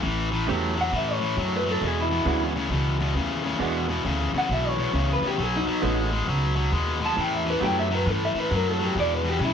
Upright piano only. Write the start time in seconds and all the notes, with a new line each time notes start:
0.47 A3 B3 C#4 E4 G4
2.25 G#3 B3 D4 E4 F#4
3.59 G#3 B3 D4 E4 F#4
5.81 A3 B3 C#4 D#4 F#4
7.60 A3 B3 C#4 E4 G4